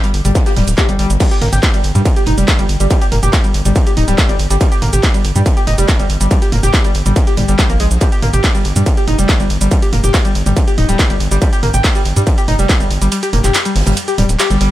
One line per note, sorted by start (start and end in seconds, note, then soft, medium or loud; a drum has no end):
0.04 0.07 G3 medium
0.04 closed hi-hat medium
0.04 shaker soft
0.14 0.21 G1 medium
0.14 open hi-hat loud
0.25 0.32 G1 medium
0.25 0.29 G3 medium
0.25 closed hi-hat medium
0.25 mid tom medium
0.25 shaker medium
0.35 kick loud
0.35 snare loud
0.35 closed hi-hat medium
0.35 open hi-hat medium
0.35 shaker medium
0.46 0.49 G4 medium
0.46 snare loud
0.46 closed hi-hat medium
0.46 open hi-hat medium
0.46 shaker soft
0.56 0.64 D1 medium
0.56 0.61 G3 medium
0.56 snare loud
0.56 mid tom medium
0.56 open hi-hat loud
0.56 open hi-hat medium
0.67 0.74 D1 medium
0.67 closed hi-hat medium
0.67 shaker medium
0.77 0.84 G4 loud
0.77 kick loud
0.77 snare loud
0.77 clap loud
0.77 closed hi-hat medium
0.77 shaker medium
0.89 0.96 G1 medium
0.89 0.93 G3 loud
0.89 closed hi-hat medium
0.89 shaker soft
0.99 1.06 G1 loud
0.99 1.05 G3 loud
0.99 closed hi-hat medium
0.99 open hi-hat loud
1.09 1.17 G1 medium
1.09 snare soft
1.09 closed hi-hat medium
1.09 shaker medium
1.20 1.23 G3 loud
1.20 kick loud
1.20 closed hi-hat medium
1.20 crash medium
1.20 ride medium
1.20 shaker medium
1.31 1.34 G4 medium
1.31 closed hi-hat medium
1.31 shaker soft
1.41 1.49 G1 medium
1.41 1.44 A#3 medium
1.41 closed hi-hat medium
1.41 mid tom medium
1.41 open hi-hat loud
1.53 1.59 G1 medium
1.53 1.58 G4 medium
1.53 closed hi-hat medium
1.53 mid tom medium
1.53 shaker medium
1.62 kick loud
1.62 snare loud
1.62 clap loud
1.62 closed hi-hat medium
1.62 open hi-hat medium
1.62 ride medium
1.62 shaker medium
1.74 1.78 G3 medium
1.74 closed hi-hat medium
1.74 shaker soft
1.84 1.91 G1 medium
1.84 closed hi-hat medium
1.84 open hi-hat loud
1.95 2.02 G2 medium
1.95 1.99 G3 medium
1.95 closed hi-hat medium
1.95 mid tom medium
1.95 shaker medium
2.05 kick loud
2.05 closed hi-hat medium
2.05 ride medium
2.05 shaker soft
2.16 2.19 G4 medium
2.16 closed hi-hat medium
2.16 shaker soft
2.26 2.34 F1 loud
2.26 2.31 D#4 loud
2.26 closed hi-hat medium
2.26 mid tom medium
2.26 open hi-hat loud
2.38 2.44 F1 medium
2.38 2.43 G3 loud
2.38 closed hi-hat medium
2.38 closed hi-hat soft
2.38 shaker medium
2.48 kick loud
2.48 snare loud
2.48 clap loud
2.48 closed hi-hat medium
2.48 ride medium
2.48 shaker medium
2.58 2.66 G1 medium
2.58 2.63 G3 medium
2.58 snare soft
2.58 closed hi-hat medium
2.58 shaker soft
2.69 2.77 G1 loud
2.69 closed hi-hat medium
2.69 open hi-hat loud
2.80 2.87 G1 medium
2.80 2.84 G3 medium
2.80 closed hi-hat soft
2.80 closed hi-hat medium
2.80 shaker medium
2.90 2.93 G3 loud
2.90 kick loud
2.90 closed hi-hat medium
2.90 ride medium
2.90 shaker soft
3.01 3.04 G4 medium
3.01 closed hi-hat medium
3.01 closed hi-hat soft
3.01 shaker soft
3.12 3.19 F1 medium
3.12 3.14 A#3 medium
3.12 closed hi-hat medium
3.12 mid tom medium
3.12 open hi-hat loud
3.23 3.30 F1 medium
3.23 3.29 G4 medium
3.23 closed hi-hat medium
3.23 mid tom medium
3.23 shaker medium
3.32 kick loud
3.32 snare loud
3.32 clap loud
3.32 closed hi-hat medium
3.32 ride medium
3.32 shaker medium
3.44 3.48 G3 medium
3.44 closed hi-hat medium
3.44 shaker soft
3.54 3.62 G1 medium
3.54 closed hi-hat medium
3.54 open hi-hat loud
3.65 3.72 G1 medium
3.65 3.69 G3 medium
3.65 closed hi-hat medium
3.65 closed hi-hat soft
3.65 mid tom medium
3.65 shaker medium
3.76 kick loud
3.76 closed hi-hat medium
3.76 ride medium
3.76 shaker medium
3.87 3.89 G4 medium
3.87 closed hi-hat medium
3.87 shaker soft
3.97 4.04 D1 medium
3.97 4.01 D#4 loud
3.97 closed hi-hat medium
3.97 mid tom medium
3.97 open hi-hat loud
4.08 4.15 D1 medium
4.08 4.14 G3 loud
4.08 closed hi-hat medium
4.08 shaker medium
4.18 kick loud
4.18 snare loud
4.18 clap loud
4.18 closed hi-hat medium
4.18 ride medium
4.18 shaker medium
4.29 4.36 G1 medium
4.29 4.33 G3 medium
4.29 closed hi-hat medium
4.29 shaker soft
4.39 4.47 G1 loud
4.39 closed hi-hat medium
4.39 open hi-hat loud
4.50 4.57 G1 medium
4.50 4.54 G3 medium
4.50 snare soft
4.50 closed hi-hat medium
4.50 shaker medium
4.61 4.63 G3 loud
4.61 kick loud
4.61 closed hi-hat medium
4.61 ride medium
4.61 shaker medium
4.72 4.74 G4 medium
4.72 closed hi-hat medium
4.72 shaker soft
4.82 4.89 G1 medium
4.82 4.84 A#3 medium
4.82 closed hi-hat medium
4.82 mid tom loud
4.82 open hi-hat loud
4.93 5.00 G1 medium
4.93 4.99 G4 medium
4.93 closed hi-hat medium
4.93 mid tom loud
4.93 shaker medium
5.03 kick loud
5.03 snare loud
5.03 clap loud
5.03 closed hi-hat medium
5.03 open hi-hat medium
5.03 ride medium
5.03 shaker medium
5.14 5.18 G3 medium
5.14 closed hi-hat medium
5.14 shaker soft
5.25 5.32 G1 medium
5.25 closed hi-hat medium
5.25 open hi-hat loud
5.36 5.42 G2 medium
5.36 5.39 G3 medium
5.36 closed hi-hat medium
5.36 mid tom medium
5.36 shaker medium
5.46 kick loud
5.46 closed hi-hat medium
5.46 ride medium
5.46 shaker medium
5.57 5.59 G4 medium
5.57 closed hi-hat medium
5.57 shaker soft
5.67 5.74 F1 medium
5.67 5.71 D#4 loud
5.67 closed hi-hat medium
5.67 mid tom medium
5.67 open hi-hat loud
5.78 5.85 F1 medium
5.78 5.84 G3 loud
5.78 closed hi-hat medium
5.78 closed hi-hat soft
5.78 shaker medium
5.88 kick loud
5.88 snare loud
5.88 clap loud
5.88 closed hi-hat medium
5.88 ride medium
5.88 shaker medium
5.99 6.06 G1 medium
5.99 6.03 G3 medium
5.99 snare soft
5.99 closed hi-hat medium
5.99 shaker soft
6.10 6.17 G1 loud
6.10 closed hi-hat medium
6.10 open hi-hat loud
6.20 6.28 G1 medium
6.20 6.25 G3 medium
6.20 closed hi-hat soft
6.20 closed hi-hat medium
6.20 shaker medium
6.31 6.33 G3 loud
6.31 kick loud
6.31 closed hi-hat loud
6.31 closed hi-hat medium
6.31 ride medium
6.31 shaker medium
6.42 6.44 G4 medium
6.42 closed hi-hat soft
6.42 closed hi-hat medium
6.42 shaker soft
6.52 6.60 F1 medium
6.52 6.55 A#3 medium
6.52 closed hi-hat medium
6.52 mid tom loud
6.52 open hi-hat loud
6.63 6.70 F1 medium
6.63 6.69 G4 medium
6.63 closed hi-hat medium
6.63 mid tom loud
6.63 shaker medium
6.73 kick loud
6.73 snare loud
6.73 clap loud
6.73 closed hi-hat medium
6.73 ride medium
6.73 shaker medium
6.84 6.88 G3 medium
6.84 closed hi-hat medium
6.84 shaker soft
6.94 7.02 G1 medium
6.94 closed hi-hat medium
6.94 open hi-hat loud
7.05 7.13 G1 medium
7.05 7.10 G3 medium
7.05 closed hi-hat soft
7.05 closed hi-hat medium
7.05 mid tom medium
7.05 shaker medium
7.16 kick loud
7.16 closed hi-hat medium
7.16 ride medium
7.16 shaker medium
7.27 7.29 G4 medium
7.27 closed hi-hat medium
7.27 shaker soft
7.37 7.45 G1 loud
7.37 7.41 G3 medium
7.37 closed hi-hat medium
7.37 mid tom medium
7.37 open hi-hat loud
7.48 7.55 G1 medium
7.48 7.51 G3 loud
7.48 closed hi-hat medium
7.48 shaker medium
7.58 7.61 G3 loud
7.58 kick loud
7.58 snare loud
7.58 clap loud
7.58 closed hi-hat medium
7.58 ride medium
7.58 shaker medium
7.70 7.76 A#1 medium
7.70 7.72 A#3 medium
7.70 closed hi-hat medium
7.70 shaker soft
7.80 7.87 A#1 loud
7.80 7.82 G#3 loud
7.80 closed hi-hat medium
7.80 open hi-hat loud
7.91 7.98 A#1 medium
7.91 snare soft
7.91 closed hi-hat medium
7.91 shaker medium
8.01 8.04 G3 loud
8.01 kick loud
8.01 closed hi-hat medium
8.01 ride medium
8.01 shaker medium
8.12 8.14 G4 medium
8.12 closed hi-hat medium
8.12 shaker soft
8.22 8.30 G1 medium
8.22 8.25 A#3 medium
8.22 closed hi-hat medium
8.22 mid tom loud
8.22 open hi-hat loud
8.33 8.40 G1 medium
8.33 8.39 G4 medium
8.33 closed hi-hat medium
8.33 mid tom loud
8.33 shaker medium
8.44 kick loud
8.44 snare loud
8.44 clap loud
8.44 closed hi-hat medium
8.44 open hi-hat medium
8.44 ride medium
8.44 shaker medium
8.55 8.59 G3 medium
8.55 closed hi-hat medium
8.55 shaker soft
8.65 8.72 G1 medium
8.65 closed hi-hat medium
8.65 open hi-hat loud
8.76 8.83 G2 medium
8.76 8.80 G3 medium
8.76 closed hi-hat medium
8.76 mid tom medium
8.76 shaker medium
8.86 kick loud
8.86 closed hi-hat medium
8.86 ride medium
8.86 shaker medium
8.97 9.00 G4 medium
8.97 closed hi-hat medium
8.97 shaker soft
9.07 9.15 F1 loud
9.07 9.12 D#4 loud
9.07 closed hi-hat medium
9.07 mid tom medium
9.07 open hi-hat loud
9.19 9.25 F1 medium
9.19 9.24 G3 loud
9.19 closed hi-hat medium
9.19 closed hi-hat soft
9.19 shaker medium
9.28 kick loud
9.28 snare loud
9.28 clap loud
9.28 closed hi-hat medium
9.28 ride medium
9.28 shaker medium
9.40 9.47 G1 medium
9.40 9.44 G3 medium
9.40 snare medium
9.40 closed hi-hat medium
9.40 shaker soft
9.50 9.57 G1 loud
9.50 closed hi-hat medium
9.50 open hi-hat loud
9.61 9.68 G1 medium
9.61 9.65 G3 medium
9.61 closed hi-hat soft
9.61 closed hi-hat medium
9.61 shaker medium
9.71 9.74 G3 loud
9.71 kick loud
9.71 closed hi-hat medium
9.71 ride medium
9.71 shaker medium
9.82 9.85 G4 medium
9.82 closed hi-hat soft
9.82 closed hi-hat medium
9.82 shaker soft
9.92 10.00 F1 medium
9.92 9.95 A#3 medium
9.92 closed hi-hat medium
9.92 mid tom medium
9.92 open hi-hat loud
10.04 10.10 F1 medium
10.04 10.09 G4 medium
10.04 closed hi-hat medium
10.04 mid tom loud
10.04 shaker medium
10.14 kick loud
10.14 snare loud
10.14 clap loud
10.14 closed hi-hat medium
10.14 closed hi-hat loud
10.14 ride medium
10.14 shaker medium
10.25 10.29 G3 medium
10.25 closed hi-hat soft
10.25 shaker soft
10.35 10.42 G1 medium
10.35 closed hi-hat medium
10.35 open hi-hat loud
10.46 10.53 G1 medium
10.46 10.50 G3 medium
10.46 closed hi-hat soft
10.46 mid tom medium
10.46 shaker medium
10.57 kick loud
10.57 closed hi-hat medium
10.57 ride medium
10.57 shaker medium
10.68 10.70 G4 medium
10.68 closed hi-hat medium
10.68 shaker soft
10.78 10.85 D1 medium
10.78 10.82 D#4 loud
10.78 closed hi-hat medium
10.78 mid tom medium
10.78 open hi-hat loud
10.89 10.96 D1 medium
10.89 10.95 G3 loud
10.89 closed hi-hat soft
10.89 shaker medium
10.99 kick loud
10.99 snare loud
10.99 clap loud
10.99 closed hi-hat medium
10.99 ride medium
10.99 shaker medium
11.10 11.17 G1 medium
11.10 11.14 G3 medium
11.10 closed hi-hat medium
11.10 shaker soft
11.20 11.28 G1 loud
11.20 closed hi-hat medium
11.20 open hi-hat loud
11.31 11.38 G1 medium
11.31 11.35 G3 medium
11.31 snare soft
11.31 closed hi-hat medium
11.31 shaker medium
11.42 11.44 G3 loud
11.42 kick loud
11.42 closed hi-hat medium
11.42 ride medium
11.42 shaker medium
11.53 11.55 G4 medium
11.53 closed hi-hat medium
11.53 shaker soft
11.63 11.70 G1 medium
11.63 11.65 A#3 medium
11.63 closed hi-hat medium
11.63 mid tom medium
11.63 open hi-hat loud
11.74 11.81 G1 medium
11.74 11.80 G4 medium
11.74 closed hi-hat medium
11.74 mid tom medium
11.74 shaker medium
11.84 kick loud
11.84 snare loud
11.84 clap loud
11.84 closed hi-hat medium
11.84 open hi-hat medium
11.84 ride medium
11.84 shaker medium
11.95 11.99 G3 medium
11.95 closed hi-hat medium
11.95 shaker soft
12.05 12.13 G1 medium
12.05 closed hi-hat medium
12.05 open hi-hat loud
12.16 12.23 G2 medium
12.16 12.20 G3 medium
12.16 closed hi-hat medium
12.16 mid tom medium
12.16 shaker medium
12.27 kick loud
12.27 closed hi-hat medium
12.27 ride medium
12.27 shaker medium
12.38 12.40 G4 medium
12.38 closed hi-hat medium
12.38 shaker soft
12.48 12.55 F1 medium
12.48 12.52 D#4 loud
12.48 closed hi-hat medium
12.48 mid tom medium
12.48 open hi-hat loud
12.59 12.66 F1 medium
12.59 12.65 G3 loud
12.59 closed hi-hat medium
12.59 closed hi-hat soft
12.59 shaker medium
12.69 kick loud
12.69 snare loud
12.69 clap loud
12.69 closed hi-hat medium
12.69 ride medium
12.69 shaker medium
12.80 12.87 G1 medium
12.80 12.84 G3 medium
12.80 snare soft
12.80 closed hi-hat medium
12.80 shaker soft
12.91 12.98 G1 loud
12.91 closed hi-hat medium
12.91 open hi-hat loud
13.02 13.08 G1 medium
13.02 13.05 G3 medium
13.02 closed hi-hat medium
13.02 closed hi-hat soft
13.02 shaker medium
13.12 13.14 G3 loud
13.12 closed hi-hat loud
13.12 closed hi-hat medium
13.12 ride medium
13.12 shaker medium
13.22 13.25 G4 medium
13.22 closed hi-hat soft
13.22 closed hi-hat medium
13.22 shaker soft
13.33 13.40 F1 medium
13.33 13.36 A#3 medium
13.33 closed hi-hat medium
13.33 mid tom medium
13.33 open hi-hat loud
13.44 13.51 F1 medium
13.44 13.50 G4 medium
13.44 clap soft
13.44 closed hi-hat medium
13.44 mid tom medium
13.44 shaker medium
13.54 snare loud
13.54 clap loud
13.54 closed hi-hat medium
13.54 ride medium
13.54 shaker medium
13.65 13.69 G3 medium
13.65 closed hi-hat medium
13.65 shaker soft
13.76 13.83 G1 medium
13.76 snare loud
13.76 open hi-hat loud
13.76 open hi-hat medium
13.81 snare medium
13.81 open hi-hat medium
13.86 13.93 G1 medium
13.86 13.90 G3 medium
13.86 snare medium
13.86 closed hi-hat medium
13.86 mid tom medium
13.86 open hi-hat medium
13.86 shaker medium
13.91 snare medium
13.91 open hi-hat medium
13.97 closed hi-hat medium
13.97 ride medium
13.97 shaker medium
14.08 14.10 G4 medium
14.08 closed hi-hat medium
14.08 shaker soft
14.18 14.25 D1 loud
14.18 14.22 G3 medium
14.18 closed hi-hat medium
14.18 mid tom medium
14.18 open hi-hat loud
14.29 14.36 D1 medium
14.29 closed hi-hat medium
14.29 shaker medium
14.39 14.46 G4 loud
14.39 snare loud
14.39 clap loud
14.39 closed hi-hat medium
14.39 ride medium
14.39 shaker medium
14.50 14.57 G1 medium
14.50 14.54 G3 loud
14.50 closed hi-hat medium
14.50 shaker soft
14.61 14.68 G1 loud
14.61 14.67 G3 loud
14.61 closed hi-hat medium
14.61 open hi-hat loud